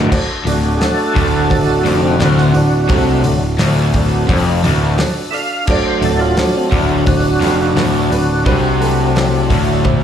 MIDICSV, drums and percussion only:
0, 0, Header, 1, 2, 480
1, 0, Start_track
1, 0, Tempo, 695249
1, 80, Time_signature, 4, 2, 24, 8
1, 6929, End_track
2, 0, Start_track
2, 0, Title_t, "Drums"
2, 82, Note_on_c, 9, 56, 94
2, 83, Note_on_c, 9, 36, 118
2, 84, Note_on_c, 9, 49, 112
2, 151, Note_off_c, 9, 56, 0
2, 152, Note_off_c, 9, 36, 0
2, 153, Note_off_c, 9, 49, 0
2, 323, Note_on_c, 9, 46, 63
2, 392, Note_off_c, 9, 46, 0
2, 559, Note_on_c, 9, 46, 88
2, 564, Note_on_c, 9, 38, 103
2, 569, Note_on_c, 9, 56, 75
2, 628, Note_off_c, 9, 46, 0
2, 633, Note_off_c, 9, 38, 0
2, 638, Note_off_c, 9, 56, 0
2, 803, Note_on_c, 9, 36, 90
2, 804, Note_on_c, 9, 46, 66
2, 872, Note_off_c, 9, 36, 0
2, 873, Note_off_c, 9, 46, 0
2, 1037, Note_on_c, 9, 56, 85
2, 1043, Note_on_c, 9, 36, 89
2, 1045, Note_on_c, 9, 46, 89
2, 1106, Note_off_c, 9, 56, 0
2, 1112, Note_off_c, 9, 36, 0
2, 1114, Note_off_c, 9, 46, 0
2, 1282, Note_on_c, 9, 46, 61
2, 1351, Note_off_c, 9, 46, 0
2, 1517, Note_on_c, 9, 46, 79
2, 1522, Note_on_c, 9, 38, 108
2, 1530, Note_on_c, 9, 56, 76
2, 1586, Note_off_c, 9, 46, 0
2, 1591, Note_off_c, 9, 38, 0
2, 1599, Note_off_c, 9, 56, 0
2, 1643, Note_on_c, 9, 38, 32
2, 1712, Note_off_c, 9, 38, 0
2, 1756, Note_on_c, 9, 46, 57
2, 1825, Note_off_c, 9, 46, 0
2, 1993, Note_on_c, 9, 46, 82
2, 2000, Note_on_c, 9, 36, 111
2, 2004, Note_on_c, 9, 56, 96
2, 2063, Note_off_c, 9, 46, 0
2, 2069, Note_off_c, 9, 36, 0
2, 2073, Note_off_c, 9, 56, 0
2, 2236, Note_on_c, 9, 46, 60
2, 2305, Note_off_c, 9, 46, 0
2, 2476, Note_on_c, 9, 46, 88
2, 2481, Note_on_c, 9, 38, 112
2, 2493, Note_on_c, 9, 56, 74
2, 2545, Note_off_c, 9, 46, 0
2, 2550, Note_off_c, 9, 38, 0
2, 2562, Note_off_c, 9, 56, 0
2, 2718, Note_on_c, 9, 46, 66
2, 2722, Note_on_c, 9, 36, 91
2, 2787, Note_off_c, 9, 46, 0
2, 2791, Note_off_c, 9, 36, 0
2, 2962, Note_on_c, 9, 46, 94
2, 2963, Note_on_c, 9, 36, 98
2, 2970, Note_on_c, 9, 56, 86
2, 3031, Note_off_c, 9, 46, 0
2, 3032, Note_off_c, 9, 36, 0
2, 3039, Note_off_c, 9, 56, 0
2, 3203, Note_on_c, 9, 46, 65
2, 3272, Note_off_c, 9, 46, 0
2, 3439, Note_on_c, 9, 46, 86
2, 3444, Note_on_c, 9, 38, 116
2, 3449, Note_on_c, 9, 56, 74
2, 3508, Note_off_c, 9, 46, 0
2, 3513, Note_off_c, 9, 38, 0
2, 3518, Note_off_c, 9, 56, 0
2, 3682, Note_on_c, 9, 46, 63
2, 3751, Note_off_c, 9, 46, 0
2, 3916, Note_on_c, 9, 49, 107
2, 3921, Note_on_c, 9, 36, 113
2, 3933, Note_on_c, 9, 56, 91
2, 3985, Note_off_c, 9, 49, 0
2, 3990, Note_off_c, 9, 36, 0
2, 4002, Note_off_c, 9, 56, 0
2, 4158, Note_on_c, 9, 46, 66
2, 4227, Note_off_c, 9, 46, 0
2, 4397, Note_on_c, 9, 46, 90
2, 4402, Note_on_c, 9, 38, 111
2, 4412, Note_on_c, 9, 56, 69
2, 4466, Note_off_c, 9, 46, 0
2, 4471, Note_off_c, 9, 38, 0
2, 4481, Note_off_c, 9, 56, 0
2, 4639, Note_on_c, 9, 46, 68
2, 4641, Note_on_c, 9, 36, 90
2, 4708, Note_off_c, 9, 46, 0
2, 4710, Note_off_c, 9, 36, 0
2, 4877, Note_on_c, 9, 46, 91
2, 4881, Note_on_c, 9, 36, 97
2, 4890, Note_on_c, 9, 56, 80
2, 4947, Note_off_c, 9, 46, 0
2, 4950, Note_off_c, 9, 36, 0
2, 4959, Note_off_c, 9, 56, 0
2, 5123, Note_on_c, 9, 46, 67
2, 5127, Note_on_c, 9, 38, 34
2, 5192, Note_off_c, 9, 46, 0
2, 5196, Note_off_c, 9, 38, 0
2, 5361, Note_on_c, 9, 46, 85
2, 5366, Note_on_c, 9, 38, 118
2, 5369, Note_on_c, 9, 56, 73
2, 5430, Note_off_c, 9, 46, 0
2, 5435, Note_off_c, 9, 38, 0
2, 5438, Note_off_c, 9, 56, 0
2, 5607, Note_on_c, 9, 46, 62
2, 5676, Note_off_c, 9, 46, 0
2, 5842, Note_on_c, 9, 36, 115
2, 5842, Note_on_c, 9, 46, 74
2, 5846, Note_on_c, 9, 56, 88
2, 5911, Note_off_c, 9, 36, 0
2, 5911, Note_off_c, 9, 46, 0
2, 5915, Note_off_c, 9, 56, 0
2, 6087, Note_on_c, 9, 46, 62
2, 6156, Note_off_c, 9, 46, 0
2, 6323, Note_on_c, 9, 56, 74
2, 6325, Note_on_c, 9, 46, 80
2, 6330, Note_on_c, 9, 38, 114
2, 6392, Note_off_c, 9, 56, 0
2, 6394, Note_off_c, 9, 46, 0
2, 6399, Note_off_c, 9, 38, 0
2, 6561, Note_on_c, 9, 46, 63
2, 6562, Note_on_c, 9, 36, 88
2, 6630, Note_off_c, 9, 46, 0
2, 6631, Note_off_c, 9, 36, 0
2, 6799, Note_on_c, 9, 48, 71
2, 6801, Note_on_c, 9, 36, 86
2, 6801, Note_on_c, 9, 56, 95
2, 6868, Note_off_c, 9, 48, 0
2, 6870, Note_off_c, 9, 36, 0
2, 6870, Note_off_c, 9, 56, 0
2, 6929, End_track
0, 0, End_of_file